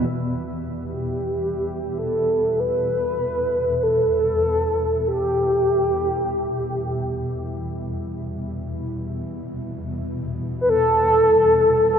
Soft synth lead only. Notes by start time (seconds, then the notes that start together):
0.75 G4
1.98 A4
2.60 B4
3.83 A4
5.08 G4
10.61 B4
10.69 A4
11.93 A4